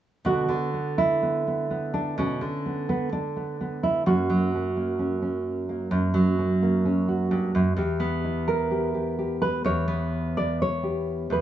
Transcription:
0.25 B2 D3 B3 F#4
0.49 D3
0.74 B3
0.98 E4
1.22 B3
1.47 B3
1.71 B3
1.94 D4
2.18 B2 C#4
2.41 D3
2.66 B3
2.89 B3
3.13 D4
3.36 B3
3.61 B3
3.83 E4
4.06 F#2 F#3 A#3 C#4 F#4
4.30 F#3
4.55 C#4
4.77 A#3
4.99 C#4
5.22 C#4
5.69 A#3
5.91 F#2
6.14 F#3
6.39 C#4
6.62 A#3
6.85 C#4
7.08 F#4
7.31 G2
7.55 F#2
7.76 E2 G4
8.00 B3
8.24 E4
8.48 A#4
8.71 G4
8.94 G4
9.19 G4
9.42 B4
9.64 E2 C#5
9.88 B3
10.37 D5
10.62 C#5
10.83 G4
11.30 E2 B4

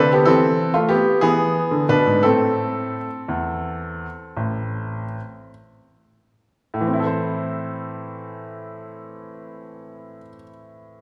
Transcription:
Already playing: D3 D4 B4
0.13 B3 G4
0.26 E3 C4 A4
0.74 A3 F4
0.89 B3 G4
1.21 E3 B3 G#4
1.71 D3
1.89 B2 D4 B4
2.06 G#2
2.23 A2 A3 C4 A4
3.28 E2
4.37 A1
6.74 A2
6.81 E3
6.87 C4
6.93 E4
7.00 A4
7.06 C5

